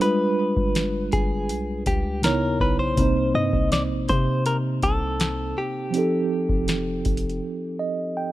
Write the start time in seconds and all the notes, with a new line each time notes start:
0.00 G3 G#3 D4 F4 B4, closed hi-hat
0.06 B4
0.57 G1, kick
0.75 snare, closed hi-hat
1.12 G1 G#4, kick, closed hi-hat
1.49 B1, closed hi-hat
1.86 C#2 G4, kick, closed hi-hat
2.22 C#3 B3 D#4 E4 A#4 C#5, snare, closed hi-hat
2.42 D#2
2.60 B1 B4, kick
2.79 C5
2.94 C2 C3 A#3 C4, kick, closed hi-hat
3.00 D#4 C5
3.35 G2 D#5
3.53 C2, kick
3.72 D5, snare, closed hi-hat
3.90 A#1
4.09 C3 C5, kick, closed hi-hat
4.46 A#4, closed hi-hat
4.83 C2 A4, kick, closed hi-hat
5.20 snare, closed hi-hat
5.58 G4
5.91 F3 C4 D#4, closed hi-hat
5.96 G4 A4
6.49 F1, kick
6.68 snare, closed hi-hat
7.05 F1, kick, closed hi-hat
7.17 closed hi-hat
7.30 closed hi-hat
7.79 D#5
8.17 G5